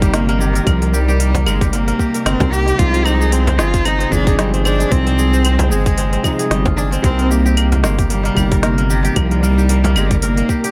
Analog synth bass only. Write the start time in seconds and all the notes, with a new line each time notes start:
Already playing: G1
0.67 C2
1.46 G1
2.26 G1
2.41 C2
2.79 C2
3.59 G1
4.12 G1
4.92 C2
5.71 G1
6.51 G1
7.04 C2
7.83 G1
8.37 G1
9.16 C2
9.96 G1